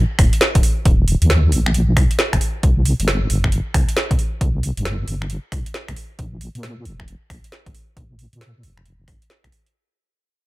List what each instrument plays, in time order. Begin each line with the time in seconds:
0.19 wobble bass D#1, finger snap, kick, open hi-hat
0.33 closed hi-hat
0.41 snare
0.55 wobble bass D#1, kick, closed hi-hat
0.63 open hi-hat
0.85 wobble bass D#1, kick, closed hi-hat
1.08 open hi-hat
1.22 wobble bass D#2, closed hi-hat
1.30 snare, closed hi-hat
1.52 wobble bass A#1, open hi-hat
1.66 finger snap
1.74 closed hi-hat
1.97 wobble bass C2, finger snap, kick, open hi-hat
2.11 closed hi-hat
2.19 snare
2.33 wobble bass D#1, finger snap, kick, closed hi-hat
2.41 open hi-hat
2.63 wobble bass C2, kick, closed hi-hat
2.85 open hi-hat
3.00 wobble bass G1, closed hi-hat
3.08 snare, closed hi-hat
3.30 wobble bass G1, open hi-hat
3.44 finger snap, kick
3.52 closed hi-hat
3.74 wobble bass C2, finger snap, kick, open hi-hat
3.89 closed hi-hat
3.97 snare
4.11 wobble bass C2, kick, closed hi-hat
4.19 open hi-hat
4.41 wobble bass C2, kick, closed hi-hat
4.63 open hi-hat
4.77 wobble bass G1, closed hi-hat
4.85 snare, closed hi-hat
5.08 wobble bass G1, open hi-hat
5.22 finger snap
5.30 closed hi-hat
5.52 wobble bass C2, finger snap, kick, open hi-hat
5.66 closed hi-hat
5.74 snare
5.88 wobble bass C2, finger snap, kick, closed hi-hat
5.96 open hi-hat
6.19 wobble bass A#1, kick, closed hi-hat
6.41 open hi-hat
6.55 wobble bass A#2, closed hi-hat
6.63 snare, closed hi-hat
6.85 wobble bass F1, open hi-hat
7.00 finger snap, kick
7.08 closed hi-hat
7.30 wobble bass A#1, finger snap, kick, open hi-hat
7.44 closed hi-hat
7.52 snare
7.66 wobble bass A#1, kick, closed hi-hat
7.75 open hi-hat
7.97 wobble bass A#1, kick, closed hi-hat
8.19 open hi-hat
8.33 wobble bass A#2, closed hi-hat
8.41 snare, closed hi-hat
8.63 wobble bass F1, open hi-hat
8.77 finger snap
8.86 closed hi-hat
9.08 wobble bass G#1, finger snap, kick, open hi-hat
9.22 closed hi-hat
9.30 snare
9.44 wobble bass A#1, finger snap, kick, closed hi-hat
9.52 open hi-hat
9.66 closed hi-hat